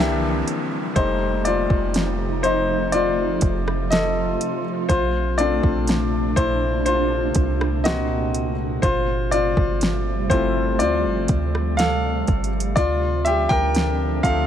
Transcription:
Already playing: C2 C3 E3 E5, downlifter
0.00 A#3 D4 G4
0.48 closed hi-hat
0.96 F1 F3 G3 A3 D#4 C5, kick, closed hi-hat
1.45 F4 D5, closed hi-hat
1.70 F1, kick
1.94 snare, closed hi-hat
2.43 D#4 C5, closed hi-hat
2.92 F4 D5, closed hi-hat
3.41 F1, kick, closed hi-hat
3.68 cross-stick
3.90 A4 D#5, snare, closed hi-hat
4.41 closed hi-hat
4.89 A#1 A#2 C3 D4 F4 C5, kick, closed hi-hat
5.38 A3 C4 D4 F4 D5, closed hi-hat
5.63 A#1, kick
5.87 snare, closed hi-hat
6.36 A#1 E4 C5, kick, closed hi-hat
6.86 F4 C5, closed hi-hat
7.35 C2, kick, closed hi-hat
7.61 cross-stick
7.84 A#3 C4 F#4 D#5, snare, closed hi-hat
8.35 closed hi-hat
8.82 G1 F3 G3 A3 F4 C5, kick, closed hi-hat
9.31 F4 D5, closed hi-hat
9.57 G1, kick
9.81 snare, closed hi-hat
10.30 G1 A3 C4 E4 F4 C5, kick, closed hi-hat
10.79 D2 F4 D5, closed hi-hat
11.05 G1
11.28 D2, kick, closed hi-hat
11.55 cross-stick
11.77 A4 F5, snare, closed hi-hat
12.27 G1, kick, closed hi-hat
12.44 closed hi-hat
12.60 closed hi-hat
12.76 D2 D3 F3 C4 D4 F4 D5, kick, closed hi-hat
13.25 G4 E5, closed hi-hat
13.49 D2 A#4 G5, kick
13.75 snare, closed hi-hat
14.23 D2 F3 C4 A4 E5 F5, kick, closed hi-hat

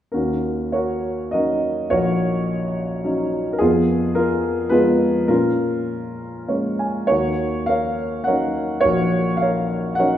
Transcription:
0.12 D#2 C#4 F#4 A#4
0.72 F#4 A#4 C#5
1.31 F#3 C#4 D#4 F#4 A#4 D#5
1.90 A#1 F#4 A#4 C#5
3.04 F#3 C#4 D#4
3.53 A#4
3.59 F2 B3 F4 G#4
4.15 F4 A#4
4.69 F3 G#3 B3 F4 G#4 B4
5.28 A#2 C#4 F4 A#4
6.48 G#3 A#3 C#4 C#5
6.79 G#5
7.07 D#2 F#4 A#4 C#5
7.66 A#4 C#5 F5
8.24 F#3 C#4 D#4 A#4 C#5 F#5
8.80 F#4 A#4 C#5
8.85 A#1
9.37 F5
9.42 A#4 C#5
9.95 F#3 C#4 D#4 F#5
9.99 A#4 C#5

